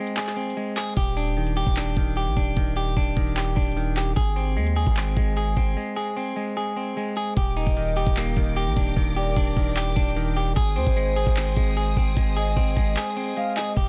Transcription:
Already playing: G#3 C4 G#4
0.07 closed hi-hat
0.17 G#4, clap, closed hi-hat
0.27 clap
0.36 C4, closed hi-hat
0.43 closed hi-hat
0.50 closed hi-hat
0.57 G#3, closed hi-hat
0.77 G#4, clap, closed hi-hat
0.97 D#1 G4, kick, closed hi-hat
1.17 D4, closed hi-hat
1.37 D#3, closed hi-hat
1.47 closed hi-hat
1.57 G4, closed hi-hat
1.67 D#1, kick
1.76 D4, clap, closed hi-hat
1.96 D#1 D#3, kick, closed hi-hat
2.17 G4, closed hi-hat
2.27 A#1
2.37 D#1 D4, kick, closed hi-hat
2.57 D#1 D#3, kick, closed hi-hat
2.77 G4, closed hi-hat
2.97 D#1 D4, kick, closed hi-hat
3.17 D#1 D#3, kick, closed hi-hat
3.22 closed hi-hat
3.27 closed hi-hat
3.32 closed hi-hat
3.37 G4, clap, closed hi-hat
3.56 D#1 D4, kick, closed hi-hat
3.62 closed hi-hat
3.67 closed hi-hat
3.72 closed hi-hat
3.77 D#3, closed hi-hat
3.97 G4, clap, closed hi-hat
4.16 G#1 G#4, kick, closed hi-hat
4.36 C4, closed hi-hat
4.57 D#2 G#3, closed hi-hat
4.67 closed hi-hat
4.76 G#4, closed hi-hat
4.87 G#1, kick
4.96 C4, clap, closed hi-hat
5.16 G#1 G#3, kick, closed hi-hat
5.37 G#4, closed hi-hat
5.57 G#1 C4, kick, closed hi-hat
5.77 G#3
5.96 G#4
6.17 C4
6.36 G#3
6.57 G#4
6.76 C4
6.97 G#3
7.17 G#4
7.37 D#1 G4 A#4 G5 D6, kick, closed hi-hat
7.57 D#4 D#5, closed hi-hat
7.67 D#1, kick
7.77 D#3, closed hi-hat
7.97 G4, closed hi-hat
8.07 D#1, kick
8.16 A#3, clap, closed hi-hat
8.36 D#1 D#3, kick, closed hi-hat
8.56 G4, closed hi-hat
8.67 A#1
8.76 D#1 D4, kick, closed hi-hat, open hi-hat
8.87 closed hi-hat
8.97 D#1 D#3, kick, closed hi-hat
9.16 G4 D5, closed hi-hat
9.36 D#1 D4, kick, closed hi-hat
9.57 D#1 D#3, kick, closed hi-hat
9.63 closed hi-hat
9.70 closed hi-hat
9.76 G4, clap, closed hi-hat
9.96 D#1 D4, kick, closed hi-hat
10.03 closed hi-hat
10.10 closed hi-hat
10.16 D#3, closed hi-hat
10.37 G4, closed hi-hat
10.56 G#1 G#4 C5 G#5 D#6, kick, closed hi-hat
10.76 D#2 C4 C5, closed hi-hat
10.87 G#1, kick
10.96 G#3, closed hi-hat
11.16 G#4, closed hi-hat
11.27 G#1, kick
11.36 C4, clap, closed hi-hat
11.56 G#1 G#3, kick, closed hi-hat
11.77 G#4, closed hi-hat
11.97 G#1 C4, kick, closed hi-hat, open hi-hat
12.07 closed hi-hat
12.17 G#1 G#3, kick, closed hi-hat
12.36 G#4 D#5, closed hi-hat
12.57 G#1 C4, kick, closed hi-hat
12.63 closed hi-hat
12.70 closed hi-hat
12.76 G#1 G#3, kick, closed hi-hat, open hi-hat
12.87 closed hi-hat
12.96 G#4, clap, closed hi-hat
13.17 C4, closed hi-hat
13.23 closed hi-hat
13.30 closed hi-hat
13.37 G#3 F5, closed hi-hat
13.57 G#4 D#5, clap, closed hi-hat
13.77 D#1 G4 A#4 G5 D6, kick, closed hi-hat

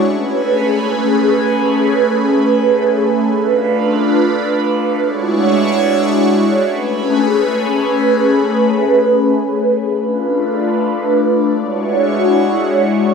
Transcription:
0.05 A3 C#4 G#4 B4
3.34 D4 F4 B4
4.98 G#3 D4 E4 F#4 C#5
6.63 A3 C#4 G#4 B4
9.92 A3 D4 F4 B4
11.56 G#3 E4 F#4 C#5

